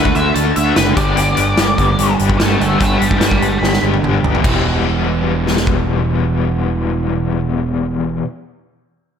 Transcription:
Already playing: D2 D3 A3 D4 F#4 B4
0.05 kick
0.15 D2 E5, closed hi-hat
0.34 D2 A5, closed hi-hat
0.56 D2 A3 D4 F#4 E5, closed hi-hat
0.74 F#1 D3 A3 D4 F#4 B4, snare, closed hi-hat
0.95 G1 G2 D3 G3 B3 D4 G4 D5, kick, snare, closed hi-hat
1.14 G1 G2 D3 G3 B3 D4 G4, closed hi-hat
1.36 G1 G3 B3 D4 G4, closed hi-hat
1.56 G1 G3 B3 D4 G4, snare, closed hi-hat
1.78 G1, kick, closed hi-hat
1.99 G1, closed hi-hat
2.17 G1 G3 B3 D4 G4, closed hi-hat
2.30 kick
2.37 G2 D3 G3 B3 D4 G4 E5 A5, snare, closed hi-hat
2.41 G1
2.57 G1 G2 D3 G3 B3 D4 G4 E5
2.61 A5, closed hi-hat
2.76 G2 D3 G3 B3 D4 G4 E5 A5
2.81 G1, kick, closed hi-hat
2.98 G1 G3 B3 D4 G4 G5 B5, closed hi-hat
3.11 kick
3.18 G1 G3 B3 D4 G4 G5 B5, snare, closed hi-hat
3.31 kick
3.38 G1 G5 B5, closed hi-hat
3.59 G1 B5
3.64 snare
3.73 snare
3.79 G3 B3 D4 G4
3.83 G1
3.94 high tom
4.00 G1 G2 D3 G3 B3 D4 G4
4.04 mid tom
4.20 G1 B3 D4 G4
4.24 G3, floor tom
4.35 floor tom
4.40 E2 B2 E3 G3 B3 G4
4.44 E1 E3, kick, crash
5.47 snare
5.57 snare
5.67 kick

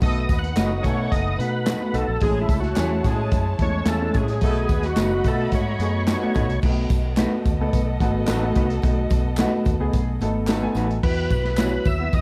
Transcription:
0.01 B1 A3 B3 D#4 F#4 A4 B4 D#5 F#5, kick, closed hi-hat, tambourine
0.20 D#5
0.29 D#2 B3 B4, kick, closed hi-hat, tambourine
0.39 F#5
0.44 closed hi-hat
0.56 F#1 F#3 A3 B3 D#4 F#4 B4 D#5, snare, clap, closed hi-hat, tambourine
0.83 B2 A3 B3 D#4 A4 C#5 G#5, kick, closed hi-hat, tambourine
1.11 F#1 D#5, kick, closed hi-hat, tambourine
1.38 B2 A3 B3 D#4 F#4 B4, closed hi-hat
1.66 A3 D#4 F#4 B4, snare, clap, closed hi-hat, tambourine
1.81 A3 B3 D#4 F#4
1.93 B1 A3 D#4 F#4 A4 B4, closed hi-hat, tambourine
2.08 A#1
2.21 A1 G#3 A3 C#4 E4 G#4 C#5 A5, kick, closed hi-hat
2.42 E4
2.49 C#2 A3 A4, kick, closed hi-hat, tambourine
2.60 F#4, snare
2.76 E2 E3 A3 C#4 E4 G#4 C#5, snare, clap, closed hi-hat, tambourine
3.04 A2 G#3 A3 C#4 E4 F#4 G#4, kick, closed hi-hat, tambourine
3.12 G#3
3.32 F#2, kick, closed hi-hat, tambourine
3.58 E2 G#3 A3 C#4 E4 C#5, kick, closed hi-hat
3.85 E2 C#4 E4 G#4 A4 C#5, snare, clap, closed hi-hat, tambourine
4.01 G#3 A3 C#4 E4
4.14 A2 C#4 E4 G#4 C#5, kick, closed hi-hat, tambourine
4.28 snare, closed hi-hat
4.41 B1 A3 B3 D#4 F#4 A4 D#5 B5, kick, closed hi-hat, tambourine
4.69 D#2 B3 B4, kick, closed hi-hat, tambourine
4.83 F#4, snare, closed hi-hat
4.96 F#1 F#3 A3 B3 D#4 F#4 B4, snare, clap, closed hi-hat, tambourine
5.24 B2 A3 B3 D#4 F4 A4, kick, closed hi-hat, tambourine
5.34 F#4
5.52 G#2 C#5, kick, closed hi-hat, tambourine
5.79 F#2 A3 B3 D#4 G#4, closed hi-hat, tambourine
6.07 A3 D#4 F#4 B4, snare, clap, closed hi-hat, tambourine
6.23 A3 B3 D#4 F#4
6.35 A2 A3 D#4 F#4 B4, kick, closed hi-hat, tambourine
6.48 C2, closed hi-hat
6.62 B1 A3 B3 D#4 F#4 A4 D#5, kick, crash, tambourine
6.90 B1, kick, closed hi-hat, tambourine
7.17 A3 B3 D#4 F#4 B4, snare, clap, closed hi-hat, tambourine
7.46 D#2, kick, closed hi-hat, tambourine
7.59 C#2 A3 B3 D#4 A4
7.73 B1, kick, closed hi-hat, tambourine
8.00 G#1 F#3 A3 B3 D#4 F#4 A4, kick, closed hi-hat, tambourine
8.28 A1 F#3 A3 D#4 F#4 A4 B4, snare, clap, closed hi-hat, tambourine
8.42 A3 B3 D#4 F#4
8.55 C2 A3 D#4 F#4 B4, kick, closed hi-hat, tambourine
8.70 closed hi-hat
8.82 B1 A3 B3 D#4 F#4, kick, closed hi-hat, tambourine
9.10 B1, kick, closed hi-hat, tambourine
9.37 A3 B3 D#4 F#4 B4, snare, clap, closed hi-hat, tambourine
9.65 D#2, kick, closed hi-hat, tambourine
9.80 C#2 A3 B3 D#4 G#4
9.93 B1, kick, closed hi-hat, tambourine
10.20 G#1 F#3 A3 B3 D#4 A4, closed hi-hat, tambourine
10.47 F#3 A3 D#4 F#4 A4 B4, snare, clap, closed hi-hat, tambourine
10.62 A3 B3 D#4 G#5
10.75 A1 A3 D#4 F#4 B4, closed hi-hat, tambourine
10.91 closed hi-hat
11.03 E2 F#3 B3 E4 F#4 B4, kick, crash
11.30 B1, kick, ride, tambourine
11.45 snare, ride
11.57 F#3 B3 E4 F#4 B4 C#5, snare, clap, ride, tambourine
11.85 D#2 E5, kick, ride, tambourine
11.99 F#3 B3 E4 F#4 B4
12.13 E2 D#5, kick, ride, tambourine

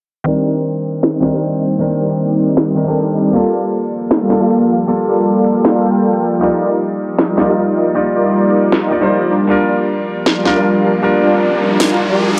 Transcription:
0.24 D#3 G3 A#3 C4 D4 D#4 G4 A#4 C5 D5
0.45 G3 C4 D#4 A#4 D5
1.03 snare
1.13 G3 C4 D#4 A#4 D#5
1.20 D#3 C4 D4 A#4, snare
1.32 G3 C4 D#4 A#4 D#5
1.61 G3 C4 D#4 A#4 D#5
1.79 D#3 C4 D4 A#4
1.99 G3 C4 D#4 A#4 D5
2.57 snare
2.67 G3 C4 D#4 A#4 D#5
2.75 D#3 C4 D4 A#4
2.84 D#3 G3 C4 D4 D#4 A#4 D5
2.88 A4
3.15 G3 C4 D#4 A#4 D5
3.32 F3 G3 A#3 F4 A4 D5
3.36 A4
3.53 G3 A#3 F4 A4 D5
4.11 snare
4.21 G3 A#3 F4 A4 F5
4.28 G3 A#3 F4, snare
4.32 A4
4.40 G3 A#3 F4 A4 F5
4.68 G3 A#3 F4 A4 F5
4.87 G3 A#3 F4 A4
5.07 G3 A#3 F4 A4 D5
5.65 snare
5.75 G3 A#3 F4 A4 F5
5.84 G3 A#3 F4 A4 G5
6.40 G3 D#4 F4 G4 A#4 D5
6.44 D5
6.61 G3 D#4 F4 A#4 D5
7.19 snare
7.29 G3 D#4 F4 A#4 D#5
7.36 G3 D#4 F4 D5, snare
7.48 G3 D#4 F4 A#4 D#5
7.76 G3 D#4 F4 A#4 D#5
7.94 G3 D#4 F4 D5
8.15 G3 D#4 F4 A#4 D5
8.72 snare
8.82 G3 D#4 F4 A#4 D#5
8.91 G3 D#4 F4 D5
9.01 G3 D#4 F4 A#4 C5 D5
9.30 F3 G3 D4 F4 A#4 D5
9.47 G3 D4 F4 A#4 D5, riser
9.69 G3 D4 F4 A#4 D5
10.26 snare
10.36 G3 D4 F4 A#4 F5
10.43 G3 D4 F4 A#4, snare
10.55 G3 D4 F4 A#4 F5
10.84 G3 D4 F4 A#4 F5
11.02 G3 D4 F4 A#4
11.22 G3 D4 F4 A#4 D5
11.80 snare
11.90 G3 D4 F4 A#4 F5
12.09 G3 D4 F4 A#4 D5

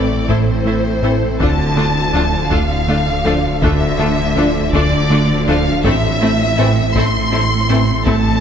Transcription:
Already playing: A1 A2 A3 C4 E4 A4 D5
0.28 A1 A2 A3 E4 A4 C5, taiko
0.65 A3 E4 A4 C5
1.03 A2 E3 A3 C4 E4 A4 C5
1.40 D1 D2 D3 A3 D4 F4 A4 A5, taiko
1.77 D3 A3 D4 F4 A4
2.13 D2 F3 A3 D4 F4 A4
2.51 D2 D3 A3 D4 F4 A4 F5, taiko
2.88 D3 A3 D4 F4 A4
3.25 D2 F3 A3 D4 F4 A4
3.61 D2 D3 A3 D4 F4 A4 E5, taiko
3.99 D3 A3 D4 F4 A4
4.36 D2 F3 A3 D4 F4 A4
4.73 D2 D3 A3 D4 F4 A4 D5, taiko
5.10 D3 A3 D4 F4 A4
5.47 D2 F3 A3 D4 F4 A4 F5
5.84 A1 A2 A3 C4 E4 A4 E5, taiko
6.21 A3 C4 E4 A4
6.58 A2 E3 A3 C4 E4 A4
6.95 A1 A2 A3 C4 E4 A4 C6, taiko
7.32 A3 C4 E4 A4
7.69 A2 E3 A3 C4 E4 A4
8.06 A1 A2 A3 C4 E4 A4 A5, taiko

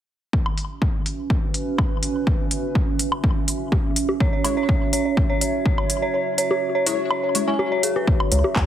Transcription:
0.33 C#4, kick
0.46 E5, high woodblock
0.51 F#4
0.58 open hi-hat
0.82 kick
0.90 B4
1.06 open hi-hat
1.30 kick
1.54 open hi-hat
1.78 kick, high woodblock
2.03 open hi-hat
2.27 kick
2.51 open hi-hat
2.75 kick
2.99 open hi-hat
3.12 high woodblock
3.24 kick
3.48 open hi-hat
3.72 kick, low bongo
3.96 open hi-hat
4.09 low bongo
4.20 C#5, kick
4.27 C#5
4.33 C#5
4.44 G#3 E4 C#5, open hi-hat, high woodblock
4.57 C#5
4.69 kick
4.93 C#5, open hi-hat
5.05 C#5
5.17 kick
5.30 C#5
5.41 C#5, open hi-hat
5.66 C#5, kick
5.78 C#5, high woodblock
5.90 open hi-hat
6.02 C#5
6.14 C#5
6.38 C#5, open hi-hat
6.51 C#5, low bongo
6.75 C#5
6.86 G#3 E4 C#5, open hi-hat
7.11 C#5, high woodblock
7.23 C#5
7.35 G#3 E4 C#5, open hi-hat
7.48 G#3 E4 C#5 G#5
7.59 C#5, low bongo
7.72 C#5
7.83 G#4, open hi-hat
7.96 B4, low bongo
8.07 C#5, kick
8.20 high woodblock
8.30 C#2 B4 C#5, open hi-hat
8.44 C#5, low bongo
8.56 E2, kick, clap

